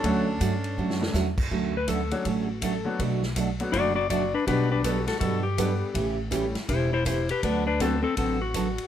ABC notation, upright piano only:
X:1
M:4/4
L:1/8
Q:"Swing" 1/4=162
K:D
V:1 name="Upright piano"
[F,A,CDF] z4 [F,A,CDA] z2 | z3 [F,A,CDF] z3 [F,A,B,DF] | z3 [F,A,B,DF] z4 | [G,B,DFG]3 z3 [G,B,DAf]2 |
z2 [G,A,CEG] z4 z | z2 [A,B,DFA] z4 z |]